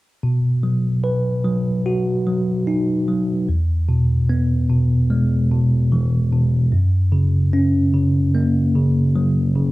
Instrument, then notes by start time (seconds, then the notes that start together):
tine electric piano
0.23 B2
0.63 F#3
1.04 B4
1.44 F#3
1.86 F#4
2.27 F#3
2.67 D#4
3.08 F#3
3.49 E2
3.89 B2
4.29 B3
4.69 B2
5.10 G#3
5.51 B2
5.92 E3
6.33 B2
6.72 F#2
7.12 C#3
7.53 C#4
7.94 C#3
8.35 A#3
8.75 C#3
9.15 F#3
9.56 C#3